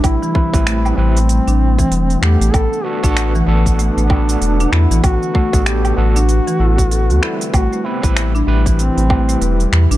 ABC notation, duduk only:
X:1
M:4/4
L:1/8
Q:"Swing 16ths" 1/4=96
K:Ador
V:1 name="Duduk"
E3 C4 G | A F2 z D3 E | F2 G F4 E | F E2 z C3 z |]